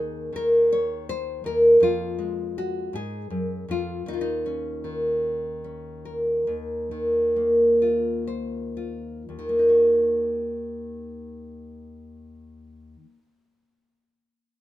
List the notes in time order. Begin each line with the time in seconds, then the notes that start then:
Already playing: D#2 D#3 D#4 G#4 A#4
0.33 D#3 A#4
0.72 C#5
1.09 C5
1.44 D#2 A#4
1.80 F2 F4
2.19 G#3
2.58 F#4
2.93 G#2 G#4
3.30 F#2
3.68 F2 F4
4.06 D#2 D#4
4.13 F4
4.21 D#4
4.46 C#4
4.84 D#3
5.64 C#4
6.05 A#4
6.47 D#2
6.91 D#3
7.36 A#3
7.82 F4
8.27 C5
8.77 F4
9.29 D#2
9.39 D#3
9.49 A#3
9.59 D#4
9.69 F#4